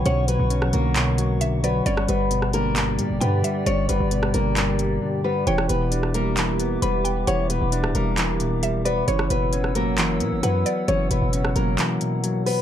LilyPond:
<<
  \new Staff \with { instrumentName = "Ambient pad" } { \time 4/4 \key g \lydian \tempo 4 = 133 << { <fis'' cis'''>1 | <d'' g''>1~ | <d'' g''>1 | <e'' d'''>1~ |
<e'' d'''>1 | <fis'' e'''>1~ | <fis'' e'''>1 | } \\ { cis''1 | g'1~ | g'1~ | g'1~ |
g'1 | cis''1~ | cis''1 | } >> }
  \new Staff \with { instrumentName = "Synth pluck" } { \time 4/4 \key g \lydian fis''2. e''8 d''8 | d''2. g''8 e''8 | d''2. r4 | g''2. b''8 g''8 |
fis''2. e''8 d''8 | cis''2. fis''8 d''8 | cis''2. r4 | }
  \new Staff \with { instrumentName = "Nylon-string guitar" } { \time 4/4 \key g \lydian <cis' cis''>8 <b b'>4 <ais ais'>2 <b b'>8 | <cis' cis''>8 <b b'>4 <ais ais'>4. <b b'>4 | <cis' cis''>8 <b b'>4 <ais ais'>2 <b b'>8 | <cis' cis''>8 <b b'>4 <ais ais'>4. <b b'>4 |
<cis' cis''>8 <b b'>4 <ais ais'>2 <b b'>8 | <cis' cis''>8 <b b'>4 <ais ais'>4. <b b'>4 | <cis' cis''>8 <b b'>4 <ais ais'>2 <b b'>8 | }
  \new Staff \with { instrumentName = "Clean electric guitar" } { \clef bass \time 4/4 \key g \lydian <b, d fis>8 fis8 cis'8 d8 b,8 fis8 d8 fis8 | g,8 g8 b,8 d8 g,8 g8 d8 g8 | g,8 g8 b,8 d8 g,8 g8 d8 g8 | e8 b,8 d'8 g8 e8 b8 g8 b8 |
e8 b,8 d'8 g8 e8 b,8 g8 b8 | e8 b,8 cis'8 fis8 e8 b8 fis8 b8 | e8 b,8 cis'8 fis8 e8 b,8 fis8 b8 | }
  \new Staff \with { instrumentName = "808-style bass" } { \clef bass \time 4/4 \key g \lydian b,,8. b,,8 ais,,16 b,,2~ b,,8 | g,,8 g,,2 b,16 g,,16 g,8 r8 | g,,8 g,,16 g,,8. g,,4. r4 | e,,8 e,,2~ e,,8 e,,4 |
e,,8. e,,8 d,,16 e,,2~ e,,8 | fis,,8 fis,,2 ais,16 fis,,16 fis,8 r8 | fis,,8 fis,,16 fis,,8. fis,,8 r2 | }
  \new DrumStaff \with { instrumentName = "Drums" } \drummode { \time 4/4 hh8 hh8 hh16 ss16 hh8 <hc hh>8 hh8 hh8 hh8 | hh16 ss16 hh8 hh16 ss16 hh8 <hc hh>8 hh8 hh8 hh8 | hh8 hh8 hh16 ss16 hh8 <hc hh>8 hh8 r4 | hh16 ss16 hh8 hh16 ss16 hh8 <hc hh>8 hh8 hh8 hh8 |
hh8 hh8 hh16 ss16 hh8 <hc hh>8 hh8 hh8 hh8 | hh16 ss16 hh8 hh16 ss16 hh8 <hc hh>8 hh8 hh8 hh8 | hh8 hh8 hh16 ss16 hh8 <hc hh>8 hh8 hh8 hho8 | }
>>